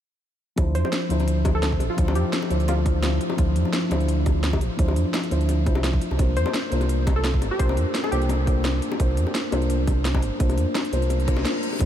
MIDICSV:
0, 0, Header, 1, 6, 480
1, 0, Start_track
1, 0, Key_signature, -1, "minor"
1, 0, Tempo, 350877
1, 789, Time_signature, 4, 2, 24, 8
1, 16218, End_track
2, 0, Start_track
2, 0, Title_t, "Synth pluck"
2, 0, Program_c, 0, 84
2, 1026, Note_on_c, 0, 72, 86
2, 1111, Note_off_c, 0, 72, 0
2, 1160, Note_on_c, 0, 72, 69
2, 1231, Note_off_c, 0, 72, 0
2, 2120, Note_on_c, 0, 69, 86
2, 2190, Note_off_c, 0, 69, 0
2, 2229, Note_on_c, 0, 69, 76
2, 2312, Note_off_c, 0, 69, 0
2, 2597, Note_on_c, 0, 65, 89
2, 2882, Note_off_c, 0, 65, 0
2, 2948, Note_on_c, 0, 67, 89
2, 3240, Note_off_c, 0, 67, 0
2, 3672, Note_on_c, 0, 65, 86
2, 4151, Note_off_c, 0, 65, 0
2, 8710, Note_on_c, 0, 72, 91
2, 8792, Note_off_c, 0, 72, 0
2, 8838, Note_on_c, 0, 72, 70
2, 8909, Note_off_c, 0, 72, 0
2, 9795, Note_on_c, 0, 69, 87
2, 9868, Note_off_c, 0, 69, 0
2, 9908, Note_on_c, 0, 69, 76
2, 9992, Note_off_c, 0, 69, 0
2, 10277, Note_on_c, 0, 67, 90
2, 10367, Note_off_c, 0, 67, 0
2, 10386, Note_on_c, 0, 72, 88
2, 10680, Note_off_c, 0, 72, 0
2, 10995, Note_on_c, 0, 69, 89
2, 11085, Note_off_c, 0, 69, 0
2, 11104, Note_on_c, 0, 67, 88
2, 11782, Note_off_c, 0, 67, 0
2, 16218, End_track
3, 0, Start_track
3, 0, Title_t, "Felt piano"
3, 0, Program_c, 1, 0
3, 768, Note_on_c, 1, 53, 74
3, 780, Note_on_c, 1, 62, 70
3, 793, Note_on_c, 1, 64, 71
3, 805, Note_on_c, 1, 72, 83
3, 1003, Control_c, 1, 64, 127
3, 1470, Note_off_c, 1, 53, 0
3, 1479, Note_off_c, 1, 62, 0
3, 1485, Note_off_c, 1, 64, 0
3, 1490, Note_on_c, 1, 53, 83
3, 1491, Note_off_c, 1, 72, 0
3, 1502, Note_on_c, 1, 62, 74
3, 1516, Note_on_c, 1, 64, 78
3, 1528, Note_on_c, 1, 72, 91
3, 2670, Note_off_c, 1, 53, 0
3, 2679, Note_off_c, 1, 62, 0
3, 2686, Note_off_c, 1, 64, 0
3, 2690, Note_on_c, 1, 53, 79
3, 2692, Note_off_c, 1, 72, 0
3, 2702, Note_on_c, 1, 62, 75
3, 2715, Note_on_c, 1, 64, 76
3, 2727, Note_on_c, 1, 72, 93
3, 3393, Note_off_c, 1, 53, 0
3, 3399, Note_off_c, 1, 62, 0
3, 3406, Note_off_c, 1, 64, 0
3, 3412, Note_off_c, 1, 72, 0
3, 3419, Note_on_c, 1, 53, 75
3, 3426, Note_on_c, 1, 62, 71
3, 3432, Note_on_c, 1, 64, 69
3, 3439, Note_on_c, 1, 72, 84
3, 3567, Note_off_c, 1, 53, 0
3, 3570, Note_off_c, 1, 62, 0
3, 3573, Note_off_c, 1, 64, 0
3, 3577, Note_off_c, 1, 72, 0
3, 3894, Note_on_c, 1, 53, 72
3, 3907, Note_on_c, 1, 62, 63
3, 3919, Note_on_c, 1, 64, 64
3, 3931, Note_on_c, 1, 72, 77
3, 4588, Note_off_c, 1, 53, 0
3, 4600, Note_off_c, 1, 62, 0
3, 4608, Note_off_c, 1, 64, 0
3, 4608, Note_on_c, 1, 53, 79
3, 4614, Note_off_c, 1, 72, 0
3, 4621, Note_on_c, 1, 62, 72
3, 4634, Note_on_c, 1, 64, 72
3, 4647, Note_on_c, 1, 72, 89
3, 5307, Note_off_c, 1, 53, 0
3, 5319, Note_off_c, 1, 62, 0
3, 5325, Note_off_c, 1, 64, 0
3, 5327, Note_on_c, 1, 53, 88
3, 5332, Note_off_c, 1, 72, 0
3, 5340, Note_on_c, 1, 62, 76
3, 5353, Note_on_c, 1, 64, 81
3, 5365, Note_on_c, 1, 72, 98
3, 6509, Note_off_c, 1, 53, 0
3, 6518, Note_off_c, 1, 62, 0
3, 6525, Note_off_c, 1, 64, 0
3, 6530, Note_on_c, 1, 53, 82
3, 6531, Note_off_c, 1, 72, 0
3, 6542, Note_on_c, 1, 62, 74
3, 6554, Note_on_c, 1, 64, 71
3, 6567, Note_on_c, 1, 72, 88
3, 7233, Note_off_c, 1, 53, 0
3, 7239, Note_off_c, 1, 62, 0
3, 7245, Note_off_c, 1, 64, 0
3, 7252, Note_off_c, 1, 72, 0
3, 7260, Note_on_c, 1, 53, 78
3, 7266, Note_on_c, 1, 62, 71
3, 7272, Note_on_c, 1, 64, 70
3, 7278, Note_on_c, 1, 72, 88
3, 7407, Note_off_c, 1, 53, 0
3, 7410, Note_off_c, 1, 62, 0
3, 7413, Note_off_c, 1, 64, 0
3, 7416, Note_off_c, 1, 72, 0
3, 7741, Note_on_c, 1, 53, 89
3, 7747, Note_on_c, 1, 62, 76
3, 7754, Note_on_c, 1, 64, 79
3, 7761, Note_on_c, 1, 72, 94
3, 7888, Note_off_c, 1, 53, 0
3, 7891, Note_off_c, 1, 62, 0
3, 7895, Note_off_c, 1, 64, 0
3, 7898, Note_off_c, 1, 72, 0
3, 8250, Control_c, 1, 64, 0
3, 8450, Note_on_c, 1, 58, 79
3, 8463, Note_on_c, 1, 62, 68
3, 8468, Control_c, 1, 64, 127
3, 8475, Note_on_c, 1, 65, 69
3, 8487, Note_on_c, 1, 72, 87
3, 9149, Note_off_c, 1, 58, 0
3, 9160, Note_off_c, 1, 62, 0
3, 9166, Note_off_c, 1, 65, 0
3, 9170, Note_on_c, 1, 58, 88
3, 9172, Note_off_c, 1, 72, 0
3, 9182, Note_on_c, 1, 62, 79
3, 9195, Note_on_c, 1, 65, 83
3, 9206, Note_on_c, 1, 72, 91
3, 10353, Note_off_c, 1, 58, 0
3, 10359, Note_off_c, 1, 62, 0
3, 10366, Note_off_c, 1, 65, 0
3, 10371, Note_off_c, 1, 72, 0
3, 10374, Note_on_c, 1, 58, 84
3, 10385, Note_on_c, 1, 62, 76
3, 10398, Note_on_c, 1, 65, 75
3, 10410, Note_on_c, 1, 72, 92
3, 11075, Note_off_c, 1, 58, 0
3, 11081, Note_off_c, 1, 62, 0
3, 11087, Note_off_c, 1, 65, 0
3, 11093, Note_off_c, 1, 72, 0
3, 11100, Note_on_c, 1, 58, 77
3, 11107, Note_on_c, 1, 62, 71
3, 11111, Note_on_c, 1, 65, 72
3, 11119, Note_on_c, 1, 72, 88
3, 11247, Note_off_c, 1, 58, 0
3, 11251, Note_off_c, 1, 62, 0
3, 11253, Note_off_c, 1, 65, 0
3, 11257, Note_off_c, 1, 72, 0
3, 11570, Note_on_c, 1, 58, 73
3, 11582, Note_on_c, 1, 62, 68
3, 11595, Note_on_c, 1, 65, 68
3, 11608, Note_on_c, 1, 72, 79
3, 12270, Note_off_c, 1, 58, 0
3, 12279, Note_off_c, 1, 62, 0
3, 12286, Note_off_c, 1, 65, 0
3, 12291, Note_on_c, 1, 58, 84
3, 12292, Note_off_c, 1, 72, 0
3, 12304, Note_on_c, 1, 62, 73
3, 12317, Note_on_c, 1, 65, 73
3, 12329, Note_on_c, 1, 72, 92
3, 12989, Note_off_c, 1, 58, 0
3, 13000, Note_off_c, 1, 62, 0
3, 13007, Note_off_c, 1, 65, 0
3, 13009, Note_on_c, 1, 58, 88
3, 13013, Note_off_c, 1, 72, 0
3, 13023, Note_on_c, 1, 62, 83
3, 13035, Note_on_c, 1, 65, 84
3, 13047, Note_on_c, 1, 72, 98
3, 14187, Note_off_c, 1, 58, 0
3, 14200, Note_off_c, 1, 62, 0
3, 14206, Note_off_c, 1, 65, 0
3, 14208, Note_on_c, 1, 58, 83
3, 14212, Note_off_c, 1, 72, 0
3, 14221, Note_on_c, 1, 62, 79
3, 14234, Note_on_c, 1, 65, 73
3, 14245, Note_on_c, 1, 72, 92
3, 14912, Note_off_c, 1, 58, 0
3, 14919, Note_off_c, 1, 62, 0
3, 14925, Note_off_c, 1, 65, 0
3, 14931, Note_off_c, 1, 72, 0
3, 14940, Note_on_c, 1, 58, 77
3, 14946, Note_on_c, 1, 62, 72
3, 14952, Note_on_c, 1, 65, 71
3, 14958, Note_on_c, 1, 72, 91
3, 15088, Note_off_c, 1, 58, 0
3, 15090, Note_off_c, 1, 62, 0
3, 15094, Note_off_c, 1, 65, 0
3, 15096, Note_off_c, 1, 72, 0
3, 15418, Note_on_c, 1, 58, 90
3, 15425, Note_on_c, 1, 62, 83
3, 15430, Note_on_c, 1, 65, 82
3, 15438, Note_on_c, 1, 72, 99
3, 15566, Note_off_c, 1, 58, 0
3, 15570, Note_off_c, 1, 62, 0
3, 15572, Note_off_c, 1, 65, 0
3, 15576, Note_off_c, 1, 72, 0
3, 16130, Note_on_c, 1, 53, 82
3, 16142, Note_on_c, 1, 62, 73
3, 16155, Note_on_c, 1, 64, 74
3, 16167, Note_on_c, 1, 72, 88
3, 16168, Control_c, 1, 64, 0
3, 16218, Note_off_c, 1, 53, 0
3, 16218, Note_off_c, 1, 62, 0
3, 16218, Note_off_c, 1, 64, 0
3, 16218, Note_off_c, 1, 72, 0
3, 16218, End_track
4, 0, Start_track
4, 0, Title_t, "Sub bass"
4, 0, Program_c, 2, 38
4, 790, Note_on_c, 2, 38, 98
4, 1029, Note_on_c, 2, 41, 85
4, 1050, Note_off_c, 2, 38, 0
4, 1146, Note_off_c, 2, 41, 0
4, 1509, Note_on_c, 2, 38, 77
4, 2468, Note_on_c, 2, 33, 74
4, 2489, Note_off_c, 2, 38, 0
4, 2585, Note_off_c, 2, 33, 0
4, 2710, Note_on_c, 2, 38, 90
4, 2949, Note_on_c, 2, 41, 85
4, 2969, Note_off_c, 2, 38, 0
4, 3066, Note_off_c, 2, 41, 0
4, 3429, Note_on_c, 2, 38, 77
4, 4372, Note_off_c, 2, 38, 0
4, 4631, Note_on_c, 2, 38, 97
4, 4869, Note_on_c, 2, 41, 86
4, 4890, Note_off_c, 2, 38, 0
4, 4986, Note_off_c, 2, 41, 0
4, 5350, Note_on_c, 2, 38, 80
4, 6310, Note_on_c, 2, 33, 77
4, 6331, Note_off_c, 2, 38, 0
4, 6426, Note_off_c, 2, 33, 0
4, 6551, Note_on_c, 2, 38, 91
4, 6790, Note_on_c, 2, 41, 82
4, 6810, Note_off_c, 2, 38, 0
4, 6906, Note_off_c, 2, 41, 0
4, 7271, Note_on_c, 2, 38, 83
4, 7751, Note_on_c, 2, 36, 90
4, 7771, Note_off_c, 2, 38, 0
4, 8213, Note_off_c, 2, 36, 0
4, 8361, Note_on_c, 2, 36, 85
4, 8460, Note_off_c, 2, 36, 0
4, 8471, Note_on_c, 2, 36, 97
4, 8710, Note_on_c, 2, 41, 82
4, 8730, Note_off_c, 2, 36, 0
4, 8826, Note_off_c, 2, 41, 0
4, 9190, Note_on_c, 2, 36, 83
4, 10150, Note_on_c, 2, 31, 78
4, 10170, Note_off_c, 2, 36, 0
4, 10266, Note_off_c, 2, 31, 0
4, 10391, Note_on_c, 2, 36, 97
4, 10629, Note_on_c, 2, 41, 82
4, 10650, Note_off_c, 2, 36, 0
4, 10746, Note_off_c, 2, 41, 0
4, 11109, Note_on_c, 2, 36, 79
4, 12052, Note_off_c, 2, 36, 0
4, 12310, Note_on_c, 2, 36, 99
4, 12548, Note_on_c, 2, 41, 88
4, 12568, Note_off_c, 2, 36, 0
4, 12665, Note_off_c, 2, 41, 0
4, 13030, Note_on_c, 2, 36, 81
4, 13988, Note_on_c, 2, 31, 78
4, 14009, Note_off_c, 2, 36, 0
4, 14105, Note_off_c, 2, 31, 0
4, 14229, Note_on_c, 2, 36, 95
4, 14468, Note_on_c, 2, 41, 85
4, 14489, Note_off_c, 2, 36, 0
4, 14585, Note_off_c, 2, 41, 0
4, 14948, Note_on_c, 2, 36, 81
4, 15421, Note_off_c, 2, 36, 0
4, 15429, Note_on_c, 2, 36, 81
4, 15669, Note_off_c, 2, 36, 0
4, 16149, Note_on_c, 2, 38, 99
4, 16218, Note_off_c, 2, 38, 0
4, 16218, End_track
5, 0, Start_track
5, 0, Title_t, "Reverse cymbal"
5, 0, Program_c, 3, 119
5, 15187, Note_on_c, 3, 60, 60
5, 16149, Note_off_c, 3, 60, 0
5, 16218, End_track
6, 0, Start_track
6, 0, Title_t, "Drums"
6, 787, Note_on_c, 9, 42, 87
6, 788, Note_on_c, 9, 60, 42
6, 789, Note_on_c, 9, 36, 110
6, 924, Note_off_c, 9, 42, 0
6, 925, Note_off_c, 9, 60, 0
6, 926, Note_off_c, 9, 36, 0
6, 1026, Note_on_c, 9, 42, 64
6, 1160, Note_on_c, 9, 60, 62
6, 1163, Note_off_c, 9, 42, 0
6, 1267, Note_on_c, 9, 38, 111
6, 1267, Note_on_c, 9, 42, 85
6, 1297, Note_off_c, 9, 60, 0
6, 1404, Note_off_c, 9, 38, 0
6, 1404, Note_off_c, 9, 42, 0
6, 1507, Note_on_c, 9, 42, 64
6, 1636, Note_off_c, 9, 42, 0
6, 1636, Note_on_c, 9, 42, 33
6, 1644, Note_on_c, 9, 60, 52
6, 1746, Note_off_c, 9, 42, 0
6, 1746, Note_on_c, 9, 42, 89
6, 1781, Note_off_c, 9, 60, 0
6, 1883, Note_off_c, 9, 42, 0
6, 1984, Note_on_c, 9, 60, 77
6, 1987, Note_on_c, 9, 42, 64
6, 1990, Note_on_c, 9, 36, 92
6, 2121, Note_off_c, 9, 60, 0
6, 2124, Note_off_c, 9, 42, 0
6, 2127, Note_off_c, 9, 36, 0
6, 2227, Note_on_c, 9, 38, 109
6, 2227, Note_on_c, 9, 42, 89
6, 2359, Note_on_c, 9, 36, 57
6, 2364, Note_off_c, 9, 38, 0
6, 2364, Note_off_c, 9, 42, 0
6, 2462, Note_on_c, 9, 60, 51
6, 2467, Note_on_c, 9, 42, 63
6, 2496, Note_off_c, 9, 36, 0
6, 2599, Note_off_c, 9, 60, 0
6, 2604, Note_off_c, 9, 42, 0
6, 2707, Note_on_c, 9, 42, 82
6, 2710, Note_on_c, 9, 36, 115
6, 2844, Note_off_c, 9, 42, 0
6, 2847, Note_off_c, 9, 36, 0
6, 2847, Note_on_c, 9, 60, 75
6, 2947, Note_on_c, 9, 42, 65
6, 2984, Note_off_c, 9, 60, 0
6, 3083, Note_off_c, 9, 42, 0
6, 3188, Note_on_c, 9, 38, 112
6, 3188, Note_on_c, 9, 42, 85
6, 3317, Note_on_c, 9, 60, 49
6, 3324, Note_off_c, 9, 38, 0
6, 3324, Note_off_c, 9, 42, 0
6, 3427, Note_on_c, 9, 42, 58
6, 3454, Note_off_c, 9, 60, 0
6, 3557, Note_off_c, 9, 42, 0
6, 3557, Note_on_c, 9, 42, 31
6, 3667, Note_off_c, 9, 42, 0
6, 3667, Note_on_c, 9, 42, 85
6, 3676, Note_on_c, 9, 60, 78
6, 3804, Note_off_c, 9, 42, 0
6, 3813, Note_off_c, 9, 60, 0
6, 3908, Note_on_c, 9, 42, 61
6, 3910, Note_on_c, 9, 36, 93
6, 4045, Note_off_c, 9, 42, 0
6, 4047, Note_off_c, 9, 36, 0
6, 4142, Note_on_c, 9, 60, 46
6, 4148, Note_on_c, 9, 38, 118
6, 4148, Note_on_c, 9, 42, 83
6, 4279, Note_off_c, 9, 60, 0
6, 4285, Note_off_c, 9, 38, 0
6, 4285, Note_off_c, 9, 42, 0
6, 4389, Note_on_c, 9, 42, 58
6, 4510, Note_on_c, 9, 60, 72
6, 4525, Note_off_c, 9, 42, 0
6, 4627, Note_on_c, 9, 42, 81
6, 4630, Note_on_c, 9, 36, 116
6, 4647, Note_off_c, 9, 60, 0
6, 4764, Note_off_c, 9, 42, 0
6, 4767, Note_off_c, 9, 36, 0
6, 4868, Note_on_c, 9, 42, 62
6, 4997, Note_on_c, 9, 60, 45
6, 5005, Note_off_c, 9, 42, 0
6, 5106, Note_on_c, 9, 38, 114
6, 5106, Note_on_c, 9, 42, 82
6, 5134, Note_off_c, 9, 60, 0
6, 5243, Note_off_c, 9, 38, 0
6, 5243, Note_off_c, 9, 42, 0
6, 5348, Note_on_c, 9, 42, 59
6, 5357, Note_on_c, 9, 60, 76
6, 5477, Note_off_c, 9, 42, 0
6, 5477, Note_on_c, 9, 42, 31
6, 5494, Note_off_c, 9, 60, 0
6, 5588, Note_off_c, 9, 42, 0
6, 5588, Note_on_c, 9, 42, 83
6, 5725, Note_off_c, 9, 42, 0
6, 5828, Note_on_c, 9, 42, 59
6, 5828, Note_on_c, 9, 60, 50
6, 5831, Note_on_c, 9, 36, 100
6, 5965, Note_off_c, 9, 42, 0
6, 5965, Note_off_c, 9, 60, 0
6, 5967, Note_off_c, 9, 36, 0
6, 6068, Note_on_c, 9, 38, 114
6, 6068, Note_on_c, 9, 42, 83
6, 6200, Note_on_c, 9, 36, 60
6, 6202, Note_on_c, 9, 60, 72
6, 6205, Note_off_c, 9, 38, 0
6, 6205, Note_off_c, 9, 42, 0
6, 6309, Note_on_c, 9, 42, 61
6, 6337, Note_off_c, 9, 36, 0
6, 6339, Note_off_c, 9, 60, 0
6, 6446, Note_off_c, 9, 42, 0
6, 6550, Note_on_c, 9, 42, 81
6, 6551, Note_on_c, 9, 36, 112
6, 6680, Note_on_c, 9, 60, 53
6, 6687, Note_off_c, 9, 36, 0
6, 6687, Note_off_c, 9, 42, 0
6, 6790, Note_on_c, 9, 42, 62
6, 6817, Note_off_c, 9, 60, 0
6, 6926, Note_off_c, 9, 42, 0
6, 7029, Note_on_c, 9, 38, 111
6, 7029, Note_on_c, 9, 42, 79
6, 7033, Note_on_c, 9, 60, 67
6, 7159, Note_off_c, 9, 42, 0
6, 7159, Note_on_c, 9, 42, 33
6, 7166, Note_off_c, 9, 38, 0
6, 7170, Note_off_c, 9, 60, 0
6, 7269, Note_off_c, 9, 42, 0
6, 7269, Note_on_c, 9, 42, 59
6, 7398, Note_off_c, 9, 42, 0
6, 7398, Note_on_c, 9, 42, 30
6, 7508, Note_off_c, 9, 42, 0
6, 7508, Note_on_c, 9, 42, 84
6, 7508, Note_on_c, 9, 60, 45
6, 7645, Note_off_c, 9, 42, 0
6, 7645, Note_off_c, 9, 60, 0
6, 7749, Note_on_c, 9, 42, 60
6, 7751, Note_on_c, 9, 36, 96
6, 7872, Note_on_c, 9, 60, 80
6, 7885, Note_off_c, 9, 42, 0
6, 7887, Note_off_c, 9, 36, 0
6, 7988, Note_on_c, 9, 38, 117
6, 7988, Note_on_c, 9, 42, 81
6, 8009, Note_off_c, 9, 60, 0
6, 8119, Note_on_c, 9, 36, 60
6, 8125, Note_off_c, 9, 38, 0
6, 8125, Note_off_c, 9, 42, 0
6, 8228, Note_on_c, 9, 42, 57
6, 8256, Note_off_c, 9, 36, 0
6, 8361, Note_on_c, 9, 60, 46
6, 8365, Note_off_c, 9, 42, 0
6, 8468, Note_off_c, 9, 60, 0
6, 8468, Note_on_c, 9, 42, 81
6, 8468, Note_on_c, 9, 60, 50
6, 8471, Note_on_c, 9, 36, 110
6, 8605, Note_off_c, 9, 42, 0
6, 8605, Note_off_c, 9, 60, 0
6, 8607, Note_off_c, 9, 36, 0
6, 8709, Note_on_c, 9, 42, 61
6, 8834, Note_on_c, 9, 60, 76
6, 8846, Note_off_c, 9, 42, 0
6, 8949, Note_on_c, 9, 38, 113
6, 8949, Note_on_c, 9, 42, 81
6, 8971, Note_off_c, 9, 60, 0
6, 9086, Note_off_c, 9, 38, 0
6, 9086, Note_off_c, 9, 42, 0
6, 9189, Note_on_c, 9, 42, 61
6, 9314, Note_on_c, 9, 60, 48
6, 9319, Note_off_c, 9, 42, 0
6, 9319, Note_on_c, 9, 42, 31
6, 9430, Note_off_c, 9, 42, 0
6, 9430, Note_on_c, 9, 42, 87
6, 9451, Note_off_c, 9, 60, 0
6, 9567, Note_off_c, 9, 42, 0
6, 9670, Note_on_c, 9, 42, 58
6, 9671, Note_on_c, 9, 36, 95
6, 9677, Note_on_c, 9, 60, 74
6, 9807, Note_off_c, 9, 36, 0
6, 9807, Note_off_c, 9, 42, 0
6, 9814, Note_off_c, 9, 60, 0
6, 9909, Note_on_c, 9, 38, 113
6, 9909, Note_on_c, 9, 42, 80
6, 10040, Note_on_c, 9, 36, 59
6, 10045, Note_off_c, 9, 38, 0
6, 10045, Note_off_c, 9, 42, 0
6, 10148, Note_on_c, 9, 60, 52
6, 10149, Note_on_c, 9, 42, 61
6, 10177, Note_off_c, 9, 36, 0
6, 10285, Note_off_c, 9, 60, 0
6, 10286, Note_off_c, 9, 42, 0
6, 10390, Note_on_c, 9, 42, 82
6, 10391, Note_on_c, 9, 36, 108
6, 10524, Note_on_c, 9, 60, 70
6, 10527, Note_off_c, 9, 36, 0
6, 10527, Note_off_c, 9, 42, 0
6, 10631, Note_on_c, 9, 42, 65
6, 10661, Note_off_c, 9, 60, 0
6, 10768, Note_off_c, 9, 42, 0
6, 10870, Note_on_c, 9, 38, 104
6, 10870, Note_on_c, 9, 42, 88
6, 10998, Note_on_c, 9, 60, 45
6, 11007, Note_off_c, 9, 38, 0
6, 11007, Note_off_c, 9, 42, 0
6, 11110, Note_on_c, 9, 42, 63
6, 11135, Note_off_c, 9, 60, 0
6, 11239, Note_off_c, 9, 42, 0
6, 11239, Note_on_c, 9, 42, 32
6, 11344, Note_on_c, 9, 60, 64
6, 11350, Note_off_c, 9, 42, 0
6, 11350, Note_on_c, 9, 42, 83
6, 11481, Note_off_c, 9, 60, 0
6, 11487, Note_off_c, 9, 42, 0
6, 11590, Note_on_c, 9, 36, 88
6, 11590, Note_on_c, 9, 42, 59
6, 11727, Note_off_c, 9, 36, 0
6, 11727, Note_off_c, 9, 42, 0
6, 11816, Note_on_c, 9, 60, 44
6, 11830, Note_on_c, 9, 38, 108
6, 11830, Note_on_c, 9, 42, 85
6, 11952, Note_off_c, 9, 60, 0
6, 11967, Note_off_c, 9, 38, 0
6, 11967, Note_off_c, 9, 42, 0
6, 12069, Note_on_c, 9, 42, 60
6, 12198, Note_on_c, 9, 60, 70
6, 12206, Note_off_c, 9, 42, 0
6, 12309, Note_on_c, 9, 36, 110
6, 12309, Note_on_c, 9, 42, 89
6, 12334, Note_off_c, 9, 60, 0
6, 12445, Note_off_c, 9, 42, 0
6, 12446, Note_off_c, 9, 36, 0
6, 12548, Note_on_c, 9, 42, 68
6, 12678, Note_on_c, 9, 60, 46
6, 12685, Note_off_c, 9, 42, 0
6, 12787, Note_on_c, 9, 38, 109
6, 12787, Note_on_c, 9, 42, 91
6, 12815, Note_off_c, 9, 60, 0
6, 12924, Note_off_c, 9, 38, 0
6, 12924, Note_off_c, 9, 42, 0
6, 13027, Note_on_c, 9, 42, 62
6, 13030, Note_on_c, 9, 60, 71
6, 13157, Note_off_c, 9, 42, 0
6, 13157, Note_on_c, 9, 42, 33
6, 13166, Note_off_c, 9, 60, 0
6, 13267, Note_off_c, 9, 42, 0
6, 13267, Note_on_c, 9, 42, 89
6, 13404, Note_off_c, 9, 42, 0
6, 13508, Note_on_c, 9, 42, 64
6, 13508, Note_on_c, 9, 60, 51
6, 13509, Note_on_c, 9, 36, 92
6, 13645, Note_off_c, 9, 42, 0
6, 13645, Note_off_c, 9, 60, 0
6, 13646, Note_off_c, 9, 36, 0
6, 13749, Note_on_c, 9, 38, 107
6, 13749, Note_on_c, 9, 42, 91
6, 13878, Note_on_c, 9, 36, 55
6, 13879, Note_on_c, 9, 60, 77
6, 13885, Note_off_c, 9, 38, 0
6, 13885, Note_off_c, 9, 42, 0
6, 13987, Note_on_c, 9, 42, 61
6, 14015, Note_off_c, 9, 36, 0
6, 14016, Note_off_c, 9, 60, 0
6, 14124, Note_off_c, 9, 42, 0
6, 14227, Note_on_c, 9, 42, 89
6, 14229, Note_on_c, 9, 36, 114
6, 14358, Note_off_c, 9, 42, 0
6, 14358, Note_on_c, 9, 42, 39
6, 14358, Note_on_c, 9, 60, 47
6, 14366, Note_off_c, 9, 36, 0
6, 14468, Note_off_c, 9, 42, 0
6, 14468, Note_on_c, 9, 42, 67
6, 14494, Note_off_c, 9, 60, 0
6, 14605, Note_off_c, 9, 42, 0
6, 14708, Note_on_c, 9, 38, 112
6, 14708, Note_on_c, 9, 42, 93
6, 14708, Note_on_c, 9, 60, 66
6, 14837, Note_off_c, 9, 42, 0
6, 14837, Note_on_c, 9, 42, 37
6, 14844, Note_off_c, 9, 60, 0
6, 14845, Note_off_c, 9, 38, 0
6, 14948, Note_off_c, 9, 42, 0
6, 14948, Note_on_c, 9, 42, 66
6, 15078, Note_off_c, 9, 42, 0
6, 15078, Note_on_c, 9, 42, 34
6, 15181, Note_on_c, 9, 60, 43
6, 15188, Note_off_c, 9, 42, 0
6, 15188, Note_on_c, 9, 42, 92
6, 15317, Note_off_c, 9, 42, 0
6, 15317, Note_on_c, 9, 42, 34
6, 15318, Note_off_c, 9, 60, 0
6, 15427, Note_off_c, 9, 42, 0
6, 15427, Note_on_c, 9, 42, 65
6, 15429, Note_on_c, 9, 36, 96
6, 15548, Note_on_c, 9, 60, 80
6, 15557, Note_on_c, 9, 38, 33
6, 15564, Note_off_c, 9, 42, 0
6, 15566, Note_off_c, 9, 36, 0
6, 15668, Note_off_c, 9, 38, 0
6, 15668, Note_on_c, 9, 38, 108
6, 15668, Note_on_c, 9, 42, 96
6, 15685, Note_off_c, 9, 60, 0
6, 15805, Note_off_c, 9, 38, 0
6, 15805, Note_off_c, 9, 42, 0
6, 15909, Note_on_c, 9, 42, 64
6, 16043, Note_on_c, 9, 60, 44
6, 16046, Note_off_c, 9, 42, 0
6, 16145, Note_off_c, 9, 60, 0
6, 16145, Note_on_c, 9, 60, 46
6, 16148, Note_on_c, 9, 42, 90
6, 16149, Note_on_c, 9, 36, 109
6, 16218, Note_off_c, 9, 36, 0
6, 16218, Note_off_c, 9, 42, 0
6, 16218, Note_off_c, 9, 60, 0
6, 16218, End_track
0, 0, End_of_file